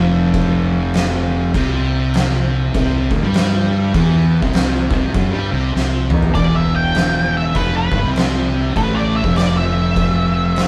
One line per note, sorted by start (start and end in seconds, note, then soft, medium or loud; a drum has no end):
0.00 1.51 F1 loud
0.00 1.54 F2 loud
0.34 kick loud
0.34 crash medium
0.94 snare loud
0.94 crash medium
1.54 2.71 C2 loud
1.54 2.74 C3 loud
1.54 kick loud
1.54 crash medium
2.14 snare loud
2.14 crash medium
2.75 3.09 C2 loud
2.75 3.10 C3 loud
2.75 kick loud
2.75 crash medium
3.11 3.22 D2 loud
3.11 3.23 D3 loud
3.11 kick loud
3.23 3.91 G2 medium
3.23 3.94 G3 loud
3.34 snare loud
3.34 crash medium
3.94 4.39 E2 loud
3.94 4.42 E3 loud
3.94 kick loud
3.94 crash medium
4.42 4.88 C2 loud
4.42 4.90 C3 loud
4.42 kick loud
4.53 snare loud
4.53 crash medium
4.91 5.14 C2 medium
4.91 5.14 C3 loud
4.91 kick loud
5.14 5.32 F#2 medium
5.14 5.32 F#3 loud
5.14 kick loud
5.14 crash medium
5.32 5.51 G2 loud
5.32 5.50 G3 loud
5.51 5.74 C2 loud
5.51 5.73 C3 loud
5.74 6.09 C2 medium
5.74 6.10 C3 loud
5.74 snare medium
6.10 6.34 E2 medium
6.10 6.35 E3 loud
6.10 mid tom medium
6.22 floor tom loud
6.35 7.52 E1 medium
6.35 7.55 E2 loud
6.35 6.55 D5 loud
6.35 kick loud
6.35 crash medium
6.55 6.75 E5 medium
6.76 7.34 G5 medium
6.95 snare loud
6.95 crash medium
7.37 7.56 E5 medium
7.55 7.89 F1 medium
7.55 7.91 F2 loud
7.55 7.75 B4 medium
7.55 kick loud
7.55 crash medium
7.77 8.07 B4 medium
7.92 8.02 G1 loud
7.92 8.04 G2 loud
7.92 kick loud
8.03 8.71 C2 medium
8.03 8.75 C3 loud
8.16 snare loud
8.16 crash medium
8.76 9.21 A1 medium
8.76 9.23 A2 loud
8.76 8.96 B4 loud
8.76 kick loud
8.76 crash medium
8.95 9.15 D5 medium
9.16 9.36 E5 medium
9.23 10.68 F1 medium
9.23 10.68 F2 loud
9.23 kick loud
9.36 9.56 D5 loud
9.36 snare loud
9.36 crash medium
9.57 10.68 E5 loud
9.96 kick loud
9.96 crash medium
10.56 snare loud
10.56 crash medium